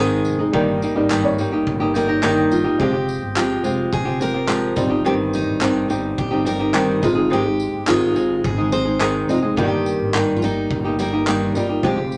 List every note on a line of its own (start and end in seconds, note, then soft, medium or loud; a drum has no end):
0.00 0.21 G#1 loud
0.00 0.39 G#2 medium
0.00 0.39 D#3 medium
0.00 0.39 G#3 medium
0.00 0.55 G#3 medium
0.00 0.39 C4 medium
0.00 0.55 C4 medium
0.00 0.39 D#4 medium
0.00 0.37 G#4 medium
0.00 0.38 G#4 medium
0.00 0.55 C5 medium
0.25 0.52 F1 medium
0.25 tambourine medium
0.39 0.53 G#3 soft
0.39 0.54 C4 soft
0.39 0.53 D#4 medium
0.39 0.53 G#4 medium
0.52 0.92 G1 medium
0.52 0.81 G2 medium
0.52 0.82 D#3 medium
0.52 0.91 G3 medium
0.52 0.81 G3 medium
0.52 0.92 A#3 medium
0.52 0.81 A#3 medium
0.52 0.92 D#4 medium
0.52 0.82 D#4 medium
0.52 0.82 G4 medium
0.52 0.92 A#4 medium
0.52 kick loud
0.82 0.96 G3 medium
0.82 0.96 A#3 medium
0.82 0.95 D#4 medium
0.82 0.94 G4 medium
0.82 tambourine medium
0.95 1.35 G#1 medium
0.95 1.21 G3 medium
0.95 1.09 G3 medium
0.95 1.21 A#3 medium
0.95 1.09 A#3 medium
0.95 1.10 D#4 medium
0.95 1.22 D#4 medium
0.95 1.10 G4 medium
0.95 1.22 A#4 medium
1.10 1.38 G2 medium
1.10 1.38 D#3 medium
1.10 1.37 G3 medium
1.10 1.38 A#3 medium
1.10 1.39 D#4 medium
1.10 1.39 G4 medium
1.10 clap loud
1.10 tambourine medium
1.23 2.26 G3 medium
1.23 2.27 A#3 medium
1.23 2.27 D#4 medium
1.23 2.27 C#5 loud
1.38 1.64 G1 medium
1.38 1.52 G3 medium
1.38 1.52 A#3 medium
1.38 1.52 D#4 medium
1.38 1.51 G4 medium
1.38 tambourine medium
1.52 1.81 G3 soft
1.52 1.80 A#3 medium
1.52 1.80 D#4 medium
1.52 1.79 G4 medium
1.67 2.47 G1 loud
1.67 kick loud
1.80 1.93 G3 medium
1.80 1.94 A#3 medium
1.80 1.95 D#4 medium
1.80 1.94 G4 medium
1.80 1.94 D#6 medium
1.94 2.08 G3 medium
1.94 2.08 A#3 medium
1.94 2.08 D#4 medium
1.94 2.07 G4 medium
1.94 2.54 A#4 medium
1.94 2.08 D#6 medium
1.94 2.08 G6 medium
1.94 tambourine medium
2.08 2.22 G3 soft
2.08 2.22 A#3 soft
2.08 2.22 D#4 medium
2.08 2.23 G4 medium
2.08 2.22 G6 medium
2.08 2.22 A#6 medium
2.22 2.65 G2 medium
2.22 2.65 D#3 loud
2.22 2.65 G3 medium
2.22 2.64 A#3 medium
2.22 2.64 D#4 loud
2.22 2.63 G4 loud
2.22 2.37 D#6 medium
2.22 2.36 G6 medium
2.22 clap medium
2.22 tambourine medium
2.38 2.78 D#6 medium
2.51 2.77 G1 medium
2.51 2.78 F4 medium
2.51 tambourine medium
2.64 2.79 G3 soft
2.64 2.80 A#3 medium
2.64 2.79 D#4 medium
2.64 2.79 G4 medium
2.78 3.18 F1 loud
2.78 2.93 F3 medium
2.78 3.82 G#3 medium
2.78 2.94 G#3 medium
2.78 2.94 C4 medium
2.78 3.82 F4 medium
2.78 2.93 F4 medium
2.78 3.82 G4 medium
2.78 3.38 G4 medium
2.78 2.92 G4 medium
2.78 3.83 C5 medium
2.78 kick loud
2.93 3.35 C4 soft
2.93 3.36 F4 soft
2.93 3.36 G4 soft
3.09 tambourine medium
3.21 3.61 G1 medium
3.36 3.64 F3 medium
3.36 3.62 G#3 medium
3.36 3.63 C4 medium
3.36 3.94 F4 medium
3.36 3.64 F4 medium
3.36 3.64 G4 medium
3.36 clap loud
3.36 tambourine medium
3.64 3.90 F1 medium
3.64 4.06 G#3 medium
3.64 4.06 C4 medium
3.64 4.05 F4 medium
3.64 4.04 G4 medium
3.64 tambourine medium
3.93 4.73 F1 medium
3.93 4.22 G#4 medium
3.93 kick loud
4.05 4.19 C4 soft
4.05 4.20 F4 medium
4.05 4.20 G4 medium
4.19 4.34 G#3 medium
4.19 4.34 C4 medium
4.19 4.34 F4 medium
4.19 4.33 G4 medium
4.19 4.79 A#4 medium
4.19 tambourine medium
4.34 4.47 C4 soft
4.34 4.47 F4 soft
4.34 4.47 G4 soft
4.47 4.76 F3 medium
4.47 4.75 G#3 medium
4.47 4.75 C4 medium
4.47 4.77 F4 medium
4.47 4.76 G4 medium
4.47 clap loud
4.47 tambourine medium
4.75 5.03 G1 loud
4.75 5.79 G3 medium
4.75 4.90 G3 medium
4.75 5.80 C4 medium
4.75 4.90 C4 medium
4.75 5.80 D#4 medium
4.75 4.89 D#4 medium
4.75 5.04 F4 medium
4.75 4.88 G4 medium
4.75 5.80 C5 medium
4.75 kick loud
4.75 tambourine medium
4.90 5.04 G3 soft
4.90 5.04 C4 soft
4.90 5.04 D#4 medium
4.90 5.05 G4 soft
5.04 5.44 G1 loud
5.04 5.59 G2 medium
5.04 5.61 D#3 medium
5.04 5.60 G3 medium
5.04 5.61 C4 medium
5.04 5.61 D#4 medium
5.04 5.61 G4 medium
5.04 5.14 G4 loud
5.33 6.21 D#4 medium
5.33 tambourine medium
5.47 5.86 G#1 medium
5.61 5.89 G2 medium
5.61 5.90 D#3 medium
5.61 5.87 G3 medium
5.61 5.88 C4 medium
5.61 5.89 D#4 medium
5.61 5.89 G4 medium
5.61 clap medium
5.61 tambourine medium
5.88 6.16 G1 loud
5.88 6.31 G3 medium
5.88 6.31 C4 medium
5.88 6.30 D#4 medium
5.88 6.29 G4 medium
5.88 tambourine medium
6.18 6.99 G1 medium
6.18 6.46 G4 medium
6.18 kick loud
6.31 6.44 G3 soft
6.31 6.45 C4 soft
6.31 6.45 D#4 medium
6.31 6.46 G4 medium
6.45 6.60 G3 medium
6.45 6.60 C4 medium
6.45 6.59 D#4 medium
6.45 6.58 G4 medium
6.45 7.05 A#4 loud
6.45 tambourine medium
6.59 6.72 G3 soft
6.59 6.73 C4 soft
6.59 6.73 D#4 medium
6.59 6.73 G4 medium
6.73 7.02 G2 medium
6.73 7.02 D#3 medium
6.73 7.01 G3 medium
6.73 7.01 C4 medium
6.73 7.02 D#4 medium
6.73 7.03 G4 medium
6.73 clap loud
6.73 tambourine medium
7.02 7.70 G#1 medium
7.02 7.16 G#3 medium
7.02 8.06 G#3 medium
7.02 7.15 C4 medium
7.02 8.06 C4 medium
7.02 7.14 D#4 medium
7.02 8.06 D#4 medium
7.02 7.33 F4 medium
7.02 7.13 G#4 medium
7.02 8.07 C5 medium
7.02 kick loud
7.02 tambourine medium
7.15 7.29 G#3 soft
7.15 7.30 C4 soft
7.15 7.30 D#4 soft
7.15 7.30 G#4 medium
7.30 7.45 G#2 medium
7.30 7.45 D#3 medium
7.30 7.44 G#3 medium
7.30 7.44 C4 medium
7.30 7.43 D#4 medium
7.30 7.85 G4 loud
7.30 7.46 G#4 medium
7.44 7.86 G#3 soft
7.44 7.86 C4 soft
7.44 7.86 D#4 soft
7.60 tambourine medium
7.73 8.12 G1 medium
7.87 8.16 G#2 medium
7.87 8.16 D#3 medium
7.87 8.13 G#3 medium
7.87 8.14 C4 medium
7.87 8.14 D#4 medium
7.87 8.41 F4 loud
7.87 8.15 G#4 medium
7.87 clap loud
7.87 tambourine medium
8.14 8.42 G#1 medium
8.14 8.58 G#3 medium
8.14 8.57 C4 medium
8.14 8.57 D#4 medium
8.14 8.56 G#4 medium
8.14 tambourine medium
8.44 9.25 G#1 loud
8.44 8.71 G#4 medium
8.44 kick loud
8.57 8.70 G#3 soft
8.57 8.71 C4 medium
8.57 8.72 D#4 medium
8.57 8.72 G#4 medium
8.71 8.86 G#3 medium
8.71 8.86 C4 medium
8.71 8.85 D#4 medium
8.71 8.84 G#4 medium
8.71 9.25 C5 loud
8.71 tambourine medium
8.85 8.99 G#3 soft
8.85 8.99 C4 soft
8.85 8.99 D#4 soft
8.85 8.99 G#4 medium
9.00 9.29 G#2 medium
9.00 9.29 D#3 medium
9.00 9.27 G#3 medium
9.00 9.28 C4 medium
9.00 9.28 D#4 medium
9.00 9.29 G#4 medium
9.00 clap loud
9.00 tambourine medium
9.28 9.55 F1 loud
9.28 9.54 G#3 medium
9.28 9.43 G#3 medium
9.28 9.55 C4 medium
9.28 9.42 C4 medium
9.28 9.55 D#4 medium
9.28 9.42 D#4 medium
9.28 9.38 F4 medium
9.28 9.41 G#4 medium
9.28 9.55 D#5 medium
9.28 tambourine medium
9.42 9.57 G#3 soft
9.42 9.57 C4 soft
9.42 9.56 D#4 soft
9.42 9.57 G#4 medium
9.56 9.96 G1 medium
9.56 10.12 G2 medium
9.56 10.13 D#3 medium
9.56 10.60 G3 medium
9.56 10.14 G3 medium
9.56 10.61 A#3 medium
9.56 10.13 A#3 medium
9.56 10.14 D#4 medium
9.56 10.61 D#4 medium
9.56 10.15 G4 medium
9.56 10.10 G4 medium
9.56 10.61 A#4 medium
9.56 kick loud
9.86 tambourine medium
9.99 10.39 G#1 medium
10.14 10.42 G2 medium
10.14 10.42 D#3 medium
10.14 10.41 G3 medium
10.14 10.42 A#3 medium
10.14 10.42 D#4 medium
10.14 10.43 G4 medium
10.14 clap loud
10.14 tambourine medium
10.36 10.43 F4 medium
10.42 10.68 G1 medium
10.42 10.85 G3 medium
10.42 10.85 A#3 medium
10.42 10.84 D#4 medium
10.42 10.96 D#4 medium
10.42 10.83 G4 medium
10.42 tambourine medium
10.70 11.51 G1 loud
10.70 kick loud
10.84 10.97 G3 soft
10.84 10.98 A#3 soft
10.84 10.99 D#4 medium
10.84 10.99 G4 medium
10.99 11.13 G3 medium
10.99 11.13 A#3 medium
10.99 11.12 D#4 medium
10.99 11.12 G4 medium
10.99 11.57 A#4 medium
10.99 tambourine medium
11.13 11.26 G3 soft
11.13 11.26 A#3 soft
11.13 11.26 D#4 soft
11.13 11.27 G4 soft
11.27 11.55 G2 medium
11.27 11.55 D#3 medium
11.27 11.54 G3 medium
11.27 11.54 A#3 medium
11.27 11.55 D#4 medium
11.27 11.55 G4 medium
11.27 clap loud
11.27 tambourine medium
11.54 11.81 G1 medium
11.54 11.81 G3 medium
11.54 11.69 G3 medium
11.54 11.81 A#3 medium
11.54 11.69 A#3 medium
11.54 11.81 D#4 medium
11.54 11.69 D#4 medium
11.54 11.85 F4 medium
11.54 11.68 G4 medium
11.54 11.82 A#4 medium
11.54 tambourine medium
11.69 11.83 G3 soft
11.69 11.83 A#3 soft
11.69 11.83 D#4 medium
11.69 11.83 G4 soft
11.82 12.17 F1 medium
11.82 11.97 F3 medium
11.82 12.17 G#3 medium
11.82 11.98 G#3 medium
11.82 11.98 C4 medium
11.82 12.17 F4 medium
11.82 11.97 F4 medium
11.82 12.17 G4 medium
11.82 12.17 G4 loud
11.82 11.96 G4 medium
11.82 12.17 C5 medium
11.82 kick loud
11.97 12.17 C4 soft
11.97 12.17 F4 soft
11.97 12.17 G4 soft
12.12 tambourine medium